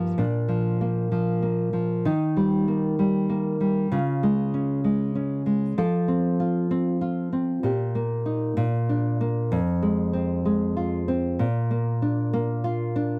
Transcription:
0.00 0.17 G2 medium
0.00 0.24 F3 soft
0.00 0.81 A#3 soft
0.00 0.17 D#4 medium
0.18 2.05 A#2 medium
0.18 2.06 D4 medium
0.48 1.10 F3 soft
0.81 1.42 A#3 soft
1.12 1.72 F3 soft
1.42 2.11 A#3 soft
1.73 2.11 F3 soft
2.05 3.91 D#3 medium
2.05 3.92 D#4 soft
2.37 2.98 G3 soft
2.68 3.28 A#3 soft
2.99 3.59 G3 soft
3.29 3.98 A#3 soft
3.61 3.98 G3 soft
3.92 5.77 C#3 medium
3.92 5.78 F4 soft
4.23 4.83 G#3 soft
4.54 5.14 C#4 soft
4.84 5.45 G#3 soft
5.15 5.84 C#4 soft
5.46 5.83 G#3 soft
5.78 7.63 F3 medium
5.78 7.64 A4 soft
6.08 6.70 C4 soft
6.40 7.00 F4 soft
6.71 7.31 C4 soft
7.01 7.70 F4 soft
7.33 7.70 C4 soft
7.63 8.56 A#2 medium
7.63 8.64 G4 soft
7.95 8.64 A#3 soft
8.26 8.63 D#4 soft
8.57 9.58 A#2 medium
8.89 9.58 D4 soft
9.21 9.58 A#3 soft
9.52 11.40 F2 medium
9.82 10.44 G#3 soft
10.13 11.07 C4 soft
10.45 11.46 G#3 soft
10.77 11.45 F4 soft
11.08 11.46 C4 medium
11.39 13.19 A#2 medium
11.71 12.32 A#3 soft
12.02 12.95 D4 soft
12.33 13.19 A#3 medium
12.64 13.19 F4 medium
12.96 13.19 D4 soft

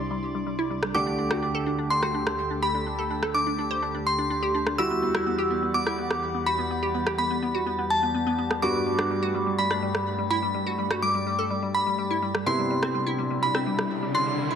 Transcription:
0.00 0.91 C2 medium
0.00 0.91 C3 medium
0.00 0.92 C3 medium
0.00 0.92 B3 medium
0.00 0.92 C4 medium
0.00 0.91 D4 medium
0.00 0.91 E4 medium
0.00 0.92 E4 medium
0.00 0.96 D5 medium
0.00 0.93 C6 medium
0.00 0.96 D6 medium
0.11 0.18 G3 medium
0.35 0.42 G3 medium
0.47 0.54 G3 medium
0.59 0.66 E4 medium
0.70 0.78 G3 medium
0.83 0.90 G3 medium
0.83 cross-stick medium
0.94 4.75 D2 medium
0.94 4.75 D3 medium
0.94 4.76 D3 medium
0.94 14.55 G3 medium
0.94 4.75 A3 medium
0.94 4.76 A3 medium
0.94 4.76 D4 medium
0.94 4.75 G4 medium
0.94 14.55 G4 medium
0.94 4.76 G4 medium
0.94 1.01 A4 medium
0.94 4.75 A4 medium
0.94 1.81 D6 medium
1.07 1.14 D4 medium
1.18 1.26 D4 medium
1.31 1.37 F#4 medium
1.31 cross-stick medium
1.42 1.49 D4 medium
1.55 1.61 A4 medium
1.66 1.73 D4 medium
1.79 1.85 D4 medium
1.90 1.98 D4 medium
1.90 2.53 C6 medium
2.03 2.10 F#4 medium
2.03 cross-stick medium
2.14 2.22 D4 medium
2.27 2.33 D4 medium
2.27 cross-stick medium
2.51 2.57 D4 medium
2.62 2.69 G4 medium
2.62 3.25 B5 medium
2.75 2.81 D4 medium
2.86 2.93 D4 medium
2.99 3.05 A4 medium
3.10 3.17 D4 medium
3.23 3.29 A4 medium
3.23 cross-stick medium
3.34 3.41 D4 medium
3.34 3.97 D6 medium
3.47 3.53 D4 medium
3.58 3.66 D4 medium
3.71 3.78 C5 medium
3.82 3.89 D4 medium
3.95 4.01 D4 medium
4.07 4.69 C6 medium
4.19 4.25 D4 medium
4.30 4.37 D4 medium
4.43 4.49 G4 medium
4.54 4.61 D4 medium
4.67 4.73 D4 medium
4.67 cross-stick medium
4.78 8.59 E2 medium
4.78 8.59 E3 medium
4.78 8.60 G3 medium
4.78 12.43 G3 medium
4.78 8.60 E4 medium
4.78 8.60 F#4 medium
4.78 4.85 G4 medium
4.78 10.51 F#5 medium
4.78 5.65 E6 loud
4.91 4.97 B3 medium
5.02 5.09 B3 medium
5.15 5.21 E4 medium
5.15 cross-stick medium
5.26 5.33 B3 medium
5.38 5.45 G4 medium
5.50 5.57 B3 medium
5.63 5.69 B3 medium
5.74 5.81 B3 medium
5.74 6.37 D6 medium
5.87 5.93 E4 loud
5.87 cross-stick medium
5.98 6.05 B3 medium
6.11 6.18 B3 medium
6.11 cross-stick medium
6.35 6.41 B3 medium
6.46 6.53 F#4 medium
6.46 7.09 B5 medium
6.59 6.65 B3 medium
6.71 6.78 B3 medium
6.83 6.90 G4 medium
6.94 7.01 B3 medium
7.07 7.13 G4 medium
7.07 cross-stick medium
7.18 7.25 B3 medium
7.18 7.81 B5 medium
7.31 7.37 B3 medium
7.42 7.50 B3 medium
7.55 7.61 F#4 medium
7.66 7.73 B3 medium
7.79 7.85 B3 medium
7.90 8.53 A5 medium
8.03 8.09 B3 medium
8.14 8.22 B3 medium
8.27 8.33 B3 medium
8.39 8.46 B3 medium
8.51 8.57 B3 medium
8.51 cross-stick medium
8.62 12.44 G2 medium
8.62 12.43 G2 medium
8.62 12.44 G3 medium
8.62 12.43 A3 medium
8.62 12.44 B3 medium
8.62 12.44 F#4 medium
8.62 8.70 F#4 medium
8.62 9.49 D6 loud
8.75 8.81 G3 medium
8.86 8.93 G3 medium
8.99 9.05 D4 medium
8.99 cross-stick medium
9.10 9.18 G3 medium
9.23 9.29 F#4 loud
9.34 9.42 G3 medium
9.47 9.54 G3 medium
9.58 9.65 G3 medium
9.58 10.21 B5 medium
9.71 9.78 D4 medium
9.71 cross-stick medium
9.82 9.89 G3 medium
9.95 10.01 G3 medium
9.95 cross-stick medium
10.19 10.25 G3 medium
10.30 10.38 E4 medium
10.30 10.93 B5 medium
10.43 10.49 G3 medium
10.54 10.61 G3 medium
10.67 10.73 F#4 medium
10.78 10.86 G3 medium
10.91 10.97 F#4 medium
10.91 cross-stick medium
11.02 11.09 G3 medium
11.02 11.65 D6 medium
11.15 11.22 G3 medium
11.27 11.34 G3 medium
11.39 11.45 A4 medium
11.50 11.57 G3 medium
11.63 11.69 G3 medium
11.75 12.37 B5 medium
11.87 11.93 G3 medium
11.98 12.05 G3 medium
12.11 12.17 E4 medium
12.22 12.29 G3 medium
12.35 12.41 G3 medium
12.35 cross-stick medium
12.46 14.55 C3 medium
12.46 14.55 G3 medium
12.46 14.55 B3 medium
12.46 14.55 C4 medium
12.46 14.55 D4 medium
12.46 12.53 E4 medium
12.46 14.55 E4 medium
12.46 13.33 C6 loud
12.46 riser medium
12.59 12.65 G3 medium
12.70 12.77 G3 medium
12.83 12.89 C4 medium
12.83 cross-stick medium
12.94 13.01 G3 medium
13.07 13.13 E4 medium
13.18 13.25 G3 medium
13.31 13.37 G3 medium
13.42 13.49 G3 medium
13.42 14.05 B5 medium
13.54 13.61 C4 medium
13.54 cross-stick medium
13.66 13.73 G3 medium
13.79 13.85 G3 medium
13.79 cross-stick medium
14.03 14.10 G3 medium
14.14 14.21 D4 medium
14.14 14.55 C6 medium
14.27 14.33 G3 medium
14.38 14.45 G3 medium
14.51 14.55 E4 medium

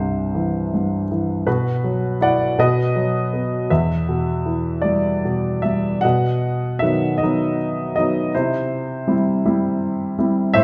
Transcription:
0.00 1.44 C2 soft
0.00 0.72 G2 soft
0.00 1.44 C3 soft
0.00 1.05 G4 soft
0.00 1.04 C5 medium
0.35 1.10 E3 soft
0.74 1.45 G2 soft
1.12 1.47 E3 soft
1.47 2.55 B2 medium
1.47 2.17 F#4 medium
1.47 2.23 B4 medium
1.84 2.56 F#3 soft
2.21 2.57 E4 soft
2.21 2.56 D5 medium
2.21 2.56 F#5 medium
2.59 3.67 B2 medium
2.59 3.67 B4 medium
2.59 3.74 D#5 medium
2.96 3.68 F#3 soft
3.33 3.69 B3 soft
3.70 6.00 E2 medium
3.70 5.60 B4 soft
3.70 5.60 E5 medium
4.09 5.23 B2 soft
4.46 5.99 E3 soft
4.82 5.63 G3 soft
4.82 5.65 D5 medium
5.25 6.01 B2 soft
5.62 6.02 G3 soft
5.62 6.04 E5 medium
6.01 8.29 B2 soft
6.01 7.16 D#5 medium
6.01 6.82 F#5 medium
6.79 7.56 D#3 soft
6.79 7.21 F#3 soft
6.79 7.21 B3 soft
6.79 7.20 E5 medium
7.18 7.94 D#5 medium
7.22 7.95 F#3 soft
7.22 7.95 B3 soft
7.22 7.95 D#4 soft
7.96 8.33 F#3 soft
7.96 8.33 B3 soft
7.96 8.33 D#4 soft
7.96 8.34 D#5 medium
8.34 10.52 C3 medium
8.34 9.07 E4 soft
8.34 9.12 C5 medium
9.07 9.44 G3 soft
9.07 9.44 C4 soft
9.07 9.44 E4 soft
9.45 10.16 G3 soft
9.45 10.16 C4 soft
9.45 10.16 E4 medium
10.19 10.54 G3 soft
10.19 10.54 C4 soft
10.19 10.54 E4 soft
10.54 10.64 A2 medium
10.54 10.64 C5 medium
10.54 10.64 E5 medium

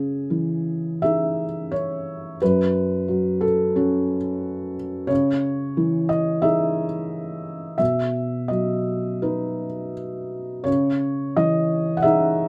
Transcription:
0.00 2.36 C#3 soft
0.00 1.02 G#4 soft
0.30 1.45 E3 soft
1.02 2.37 D#4 soft
1.02 2.37 G#4 soft
1.02 1.71 E5 medium
1.72 2.40 C#5 medium
2.42 5.07 F#2 soft
2.42 3.43 B4 medium
3.08 4.15 F#3 soft
3.41 4.76 A4 medium
3.76 5.06 C#4 soft
3.76 5.06 F#4 soft
5.07 7.75 C#3 medium
5.07 6.09 C#5 medium
5.77 6.84 E3 soft
6.09 6.43 D#5 medium
6.42 7.75 D#4 soft
6.42 7.76 G#4 soft
6.42 7.76 E5 medium
7.78 10.62 B2 soft
7.78 8.50 E5 medium
8.48 9.66 F#3 soft
8.48 9.94 D#5 soft
9.22 10.62 D#4 soft
9.22 10.62 B4 soft
10.64 12.48 C#3 soft
10.64 11.35 C#5 medium
11.37 12.45 E3 soft
11.37 11.97 D#5 medium
11.97 12.04 F#5 medium
12.02 12.48 D#4 soft
12.02 12.48 G#4 soft
12.02 12.48 E5 medium

